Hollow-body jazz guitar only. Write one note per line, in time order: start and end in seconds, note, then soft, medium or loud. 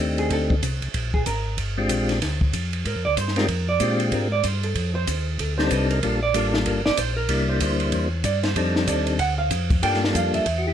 0.19 0.31 G#4 medium
0.32 0.62 A4 loud
1.14 1.26 G#4 medium
1.26 1.56 A#4 medium
2.87 3.05 A#4 medium
3.05 3.17 D5 loud
3.18 3.37 C5 medium
3.37 3.66 A#4 medium
3.69 3.98 D5 loud
4.13 4.32 A#4 medium
4.32 4.45 D5 loud
4.45 4.63 C5 medium
4.64 4.93 A4 medium
4.95 5.25 C5 loud
5.40 5.57 A4 medium
5.58 5.70 C5 loud
5.71 5.90 B4 medium
5.90 6.20 A#4 medium
6.23 6.52 D5 loud
6.67 6.85 A#4 medium
6.86 6.97 D5 loud
6.99 7.16 C5 loud
7.17 7.46 A#4 loud
7.49 7.79 C5 loud
8.25 8.43 D5 medium
8.43 8.85 C5 medium
8.87 9.07 D5 medium
9.19 9.38 F#5 loud
9.38 9.80 F5 loud
9.83 10.02 G5 loud
10.16 10.34 F5 medium
10.34 10.73 E5 loud